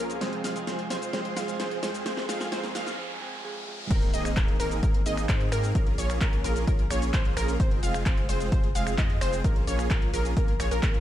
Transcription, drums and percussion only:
0.10 closed hi-hat, shaker
0.21 snare, closed hi-hat, shaker
0.33 closed hi-hat
0.44 snare, open hi-hat, shaker
0.56 closed hi-hat, shaker
0.67 snare, closed hi-hat, shaker
0.79 closed hi-hat
0.90 snare, open hi-hat, shaker
1.02 closed hi-hat, shaker
1.13 snare, closed hi-hat, shaker
1.25 closed hi-hat
1.37 snare, open hi-hat, shaker
1.48 closed hi-hat, shaker
1.60 snare, closed hi-hat, shaker
1.71 closed hi-hat
1.83 snare, open hi-hat, shaker
1.94 closed hi-hat, shaker
2.06 snare, closed hi-hat, shaker
2.17 snare, closed hi-hat
2.29 snare, open hi-hat, shaker
2.41 snare, closed hi-hat, shaker
2.52 snare, closed hi-hat, shaker
2.64 snare, closed hi-hat
2.75 snare, open hi-hat, shaker
2.87 snare, closed hi-hat, shaker
3.91 kick, closed hi-hat, crash, shaker
4.02 closed hi-hat
4.14 open hi-hat, shaker
4.25 finger snap, closed hi-hat, shaker
4.37 kick, clap, closed hi-hat, shaker
4.48 closed hi-hat
4.60 open hi-hat, shaker
4.71 closed hi-hat, shaker
4.83 kick, closed hi-hat, shaker
4.94 closed hi-hat
5.06 open hi-hat, shaker
5.17 finger snap, closed hi-hat, shaker
5.29 kick, clap, closed hi-hat, shaker
5.40 closed hi-hat
5.52 finger snap, open hi-hat, shaker
5.64 closed hi-hat, shaker
5.75 kick, closed hi-hat, shaker
5.87 closed hi-hat
5.98 open hi-hat, shaker
6.10 finger snap, closed hi-hat, shaker
6.21 kick, clap, closed hi-hat, shaker
6.33 closed hi-hat
6.44 open hi-hat, shaker
6.56 closed hi-hat, shaker
6.67 kick, closed hi-hat, shaker
6.79 closed hi-hat
6.91 finger snap, open hi-hat, shaker
7.02 closed hi-hat, shaker
7.14 kick, clap, closed hi-hat, shaker
7.25 closed hi-hat
7.37 finger snap, open hi-hat, shaker
7.48 closed hi-hat, shaker
7.60 kick, closed hi-hat, shaker
7.71 closed hi-hat
7.83 open hi-hat, shaker
7.94 finger snap, closed hi-hat, shaker
8.06 kick, clap, closed hi-hat, shaker
8.17 closed hi-hat
8.29 open hi-hat, shaker
8.40 closed hi-hat, shaker
8.52 kick, closed hi-hat, shaker
8.64 closed hi-hat
8.75 open hi-hat, shaker
8.87 finger snap, closed hi-hat, shaker
8.98 kick, clap, closed hi-hat, shaker
9.10 closed hi-hat
9.21 finger snap, open hi-hat, shaker
9.33 closed hi-hat, shaker
9.44 kick, closed hi-hat, shaker
9.56 closed hi-hat
9.67 open hi-hat, shaker
9.79 finger snap, closed hi-hat, shaker
9.90 kick, clap, closed hi-hat, shaker
10.02 closed hi-hat
10.14 open hi-hat, shaker
10.25 closed hi-hat, shaker
10.37 kick, closed hi-hat, shaker
10.48 closed hi-hat
10.60 finger snap, open hi-hat, shaker
10.71 closed hi-hat, shaker
10.83 kick, clap, closed hi-hat, shaker
10.94 closed hi-hat

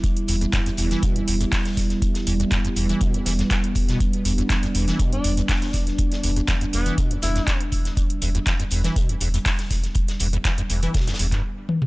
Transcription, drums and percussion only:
0.04 kick, closed hi-hat
0.17 closed hi-hat
0.28 closed hi-hat, open hi-hat
0.41 closed hi-hat
0.53 kick, snare, clap, closed hi-hat
0.66 closed hi-hat
0.77 closed hi-hat, open hi-hat
0.91 snare, closed hi-hat
1.03 kick, closed hi-hat
1.16 closed hi-hat
1.28 closed hi-hat, open hi-hat
1.41 closed hi-hat
1.52 kick, snare, clap, closed hi-hat, open hi-hat
1.65 snare, closed hi-hat
1.77 kick, snare, closed hi-hat, open hi-hat
1.90 snare, closed hi-hat
2.02 kick, closed hi-hat
2.14 snare, closed hi-hat
2.27 closed hi-hat, open hi-hat
2.40 closed hi-hat
2.51 kick, snare, clap, closed hi-hat
2.65 closed hi-hat
2.76 closed hi-hat, open hi-hat
2.89 closed hi-hat
3.01 kick, closed hi-hat
3.14 closed hi-hat
3.26 snare, closed hi-hat, open hi-hat
3.39 snare, closed hi-hat
3.50 kick, snare, clap, closed hi-hat
3.64 closed hi-hat
3.75 kick, closed hi-hat, open hi-hat
3.88 snare, closed hi-hat
4.00 kick, closed hi-hat
4.13 closed hi-hat
4.25 closed hi-hat, open hi-hat
4.38 closed hi-hat
4.50 kick, snare, clap, closed hi-hat
4.63 closed hi-hat
4.75 closed hi-hat, open hi-hat
4.88 snare, closed hi-hat
4.99 kick, closed hi-hat
5.13 closed hi-hat
5.24 closed hi-hat, open hi-hat
5.37 closed hi-hat
5.49 kick, snare, clap, closed hi-hat, open hi-hat
5.62 snare, closed hi-hat
5.73 kick, snare, closed hi-hat, open hi-hat
5.87 snare, closed hi-hat
5.98 kick, closed hi-hat
6.12 snare, closed hi-hat
6.24 closed hi-hat, open hi-hat
6.36 closed hi-hat
6.48 kick, snare, clap, closed hi-hat
6.61 closed hi-hat
6.73 closed hi-hat, open hi-hat
6.86 closed hi-hat
6.98 kick, closed hi-hat
7.11 closed hi-hat
7.22 snare, closed hi-hat, open hi-hat
7.36 snare, closed hi-hat
7.47 kick, snare, clap, closed hi-hat
7.61 closed hi-hat
7.72 kick, closed hi-hat, open hi-hat
7.85 snare, closed hi-hat
7.97 kick, closed hi-hat
8.10 closed hi-hat
8.22 closed hi-hat, open hi-hat
8.35 closed hi-hat
8.47 kick, snare, clap, closed hi-hat
8.60 closed hi-hat
8.71 closed hi-hat, open hi-hat
8.84 snare, closed hi-hat
8.96 kick, closed hi-hat
9.09 closed hi-hat
9.21 closed hi-hat, open hi-hat
9.34 closed hi-hat
9.46 kick, snare, clap, closed hi-hat, open hi-hat
9.59 snare, closed hi-hat
9.70 kick, snare, closed hi-hat, open hi-hat
9.83 snare, closed hi-hat
9.95 kick, closed hi-hat
10.08 snare, closed hi-hat
10.20 closed hi-hat, open hi-hat
10.33 closed hi-hat
10.45 kick, snare, clap, closed hi-hat
10.58 closed hi-hat
10.70 closed hi-hat, open hi-hat
10.83 closed hi-hat
10.94 kick, snare, closed hi-hat
11.00 snare, closed hi-hat
11.07 snare, closed hi-hat
11.14 snare, closed hi-hat
11.19 snare, closed hi-hat, open hi-hat
11.32 kick, snare, clap, closed hi-hat
11.69 high tom
11.82 mid tom

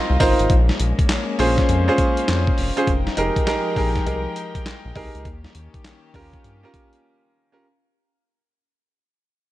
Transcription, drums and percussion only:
0.20 kick, open hi-hat, tambourine
0.39 closed hi-hat
0.50 kick, closed hi-hat
0.69 snare
0.80 closed hi-hat
0.99 kick, closed hi-hat
1.09 snare, clap, closed hi-hat
1.39 open hi-hat
1.58 kick, snare, closed hi-hat
1.69 closed hi-hat
1.98 kick, closed hi-hat
2.17 closed hi-hat
2.28 snare, clap, closed hi-hat
2.47 kick
2.58 open hi-hat
2.77 closed hi-hat
2.87 kick, closed hi-hat
3.07 snare
3.17 closed hi-hat
3.36 kick, closed hi-hat
3.47 snare, clap, closed hi-hat
3.76 kick, open hi-hat
3.96 kick, snare, closed hi-hat
4.07 closed hi-hat
4.36 closed hi-hat
4.55 kick, closed hi-hat
4.66 snare, clap, closed hi-hat
4.95 kick, open hi-hat
5.15 closed hi-hat
5.25 kick, closed hi-hat
5.44 snare
5.55 closed hi-hat
5.74 kick, closed hi-hat
5.84 snare, clap, closed hi-hat
6.14 kick, open hi-hat
6.33 kick, closed hi-hat
6.44 closed hi-hat
6.74 kick, closed hi-hat
6.93 closed hi-hat

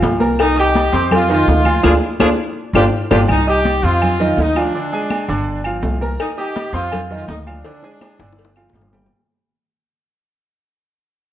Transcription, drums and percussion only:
0.03 cowbell, high conga, low timbale
0.21 high conga, low agogo
0.39 cowbell, high conga, low agogo, claves
0.57 high conga
0.75 cowbell, high conga, low timbale, low agogo
0.95 cowbell
1.11 cowbell, high conga, low conga, low agogo, claves
1.30 high conga, low agogo
1.48 cowbell, high conga, low timbale
1.65 high conga, low agogo, claves
1.83 cowbell, high conga, high timbale, claves
2.20 cowbell, high conga, high timbale, claves
2.74 cowbell, high conga, high timbale, claves
3.11 cowbell, high conga, high timbale, claves
3.28 high conga, low agogo, claves
3.48 high conga
3.65 high conga, low timbale, low agogo
4.02 high conga, low conga, low agogo, claves
4.20 high conga, low conga, low agogo
4.38 high conga, low timbale
4.56 low agogo, claves
4.74 high conga
4.93 high conga
5.10 high conga, low timbale, low agogo, claves
5.29 high conga, low agogo
5.47 high conga
5.64 high conga, low agogo, claves
5.83 high conga, low timbale
6.01 high conga, low agogo
6.20 cowbell, high conga, low agogo, claves
6.39 high conga
6.56 cowbell, high conga, low timbale, low agogo
6.74 cowbell
6.92 cowbell, high conga, low conga, low agogo, claves
7.11 high conga, low conga, low agogo
7.28 cowbell, high conga, low timbale
7.48 low agogo, claves
7.65 cowbell, high conga, high timbale
7.83 high conga, high timbale
8.01 cowbell, high conga, high timbale, low agogo, claves
8.20 high bongo, high conga, low agogo
8.33 high bongo
8.38 cowbell, high conga
8.45 high bongo
8.56 high conga, low timbale, low agogo, claves
8.70 low bongo
8.74 cowbell, high conga, low timbale
8.81 low bongo
8.92 low bongo, high conga, low timbale, low agogo
9.06 low bongo

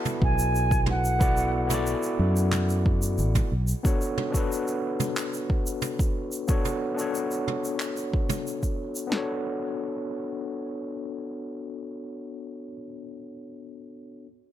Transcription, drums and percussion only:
0.05 mid tom, shaker
0.22 kick
0.39 shaker
0.55 shaker
0.71 kick, shaker
0.86 mid tom
1.05 shaker
1.21 kick, shaker
1.37 shaker
1.70 mid tom, shaker
1.86 shaker
2.03 shaker
2.36 shaker
2.52 clap, mid tom, shaker
2.69 shaker
2.86 kick
3.02 shaker
3.18 shaker
3.35 kick, mid tom, shaker
3.68 shaker
3.85 kick, shaker
4.01 shaker
4.18 mid tom
4.34 kick, shaker
4.52 shaker
4.68 shaker
5.00 mid tom, shaker
5.17 clap, shaker
5.34 shaker
5.50 kick
5.67 shaker
5.82 mid tom, shaker
5.99 kick, shaker
6.32 shaker
6.48 kick, shaker
6.65 mid tom, shaker
6.99 shaker
7.15 shaker
7.31 shaker
7.48 mid tom
7.64 shaker
7.80 clap, shaker
7.97 shaker
8.13 kick
8.29 mid tom, shaker
8.47 shaker
8.63 kick, shaker
8.95 shaker
9.12 snare

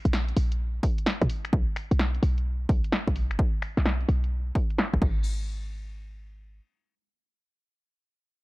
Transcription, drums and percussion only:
0.05 closed hi-hat
0.13 snare
0.28 closed hi-hat
0.37 open hi-hat
0.52 closed hi-hat
0.83 kick, open hi-hat
0.98 closed hi-hat
1.06 snare
1.21 kick, closed hi-hat
1.30 open hi-hat
1.45 finger snap, closed hi-hat
1.53 kick
1.76 finger snap, open hi-hat
1.91 closed hi-hat
1.99 snare
2.15 closed hi-hat
2.23 open hi-hat
2.38 closed hi-hat
2.69 kick, open hi-hat
2.84 closed hi-hat
2.92 snare
3.08 kick, closed hi-hat
3.16 open hi-hat
3.31 finger snap, closed hi-hat
3.39 kick
3.62 finger snap, open hi-hat
3.77 snare, closed hi-hat
3.86 snare
4.01 closed hi-hat
4.09 open hi-hat
4.24 closed hi-hat
4.55 kick, open hi-hat
4.70 closed hi-hat
4.78 snare
4.94 finger snap, kick, closed hi-hat
5.02 kick, crash

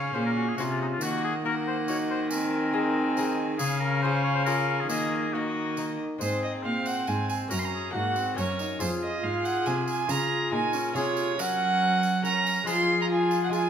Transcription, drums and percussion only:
0.58 tambourine
1.01 tambourine
1.88 tambourine
2.31 tambourine
3.17 tambourine
3.59 tambourine
4.46 tambourine
4.89 tambourine
5.77 tambourine
6.21 tambourine
6.86 tambourine
7.07 tambourine
7.29 tambourine
7.51 tambourine
8.16 tambourine
8.38 tambourine
8.59 tambourine
8.80 tambourine
9.45 tambourine
9.66 tambourine
9.88 tambourine
10.09 tambourine
10.73 tambourine
10.96 tambourine
11.17 tambourine
11.39 tambourine
12.03 tambourine
12.25 tambourine
12.47 tambourine
12.67 tambourine
13.31 tambourine
13.53 tambourine

